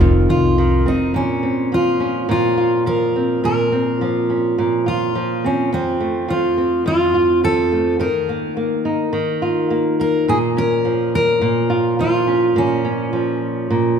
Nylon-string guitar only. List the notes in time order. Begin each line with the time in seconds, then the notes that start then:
Already playing: D#3 G#3 C4 F4
0.00 F2
0.58 D#3
0.86 C4
1.14 A#2
1.43 C4
1.72 F3
2.00 C#4
2.29 A#2
2.58 F4
2.86 F3
3.16 C4
3.44 A#2
3.72 C4
4.01 F3
4.30 C#4
4.58 A#2
4.86 F4
5.15 F3
5.44 C4
5.73 F2
6.00 A3
6.28 F3
6.58 C4
6.86 F2
7.14 F4
7.44 F3
7.72 A3
7.99 D#3
8.29 A#3
8.57 A#3
8.85 D#4
9.13 D#3
9.42 F4
9.70 A#3
10.00 A#3
10.28 A#2
10.57 C#4
10.85 F3
11.41 A#2
11.70 F4
11.99 F3
12.27 C#4
12.56 A#2
12.85 C#4
13.13 F3
13.70 A#2